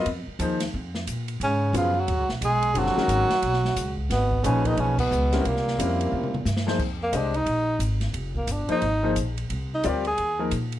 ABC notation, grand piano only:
X:1
M:4/4
L:1/8
Q:"Swing" 1/4=178
K:Dbmix
V:1 name="Grand piano"
z2 [F,B,EA=c] z4 z | z2 [D,G,CFA] z4 z | [=D,=G,=CF=A] [E,_A,_D_GB]2 z4 z | z2 [B,,F,EAc]3 z2 [=G,=CD=EB] |
z2 [=G,=CD=EB]3 z2 [F,B,_EA=c] | [K:Fdor] z2 [A,DGce] z4 z | z3 [F,B,EAc] z [F,B,EAc] z2 | z2 [G,CFBd] z2 [F,B,EAB] z2 |]